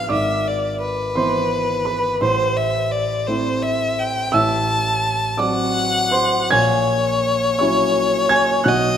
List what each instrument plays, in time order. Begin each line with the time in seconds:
Already playing: grand piano F3 B3 D4 B4 F5 B5 F6, violin F5
0.09 grand piano G#1 G#2 D5 D6, violin E5
0.48 violin D5
0.81 violin B4
1.16 grand piano E3 B3 E4 C5 C6
1.85 grand piano B4 B5
2.21 grand piano A1 A2 C5 C6, violin C5
2.57 violin E5
2.91 violin D5
3.27 grand piano A3 C4 E4, violin C5
3.62 violin E5
3.99 violin G5
4.32 grand piano A1 A2 E5 E6, violin A5
5.37 grand piano F#3 C4 F#4 D5 D6, violin F#5
6.12 grand piano C5 C6
6.51 grand piano A#1 A#2 G#5 G#6, violin C#5
7.59 grand piano F#3 C#4 E4 C#5 C#6
8.29 grand piano G#5 G#6
8.64 grand piano B1 B2 F#5 F#6
8.68 violin D#5